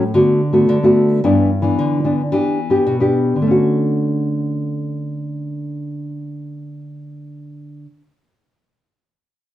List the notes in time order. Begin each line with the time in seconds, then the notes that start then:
Already playing: A2
0.14 D3 A3 B3 F#4
0.53 A3 B3 F#4
0.69 D3
0.83 A3 B3 F#4
1.24 G2 E3 B3 D4
1.62 E3 B3 D4
1.79 D3
2.04 E3 B3 D4
2.32 E3 B3 D4 G4
2.70 B3 D4 G4
2.87 B2
3.00 B3 D4 G4
3.36 D3
3.42 A3
3.47 C#4
3.51 F#4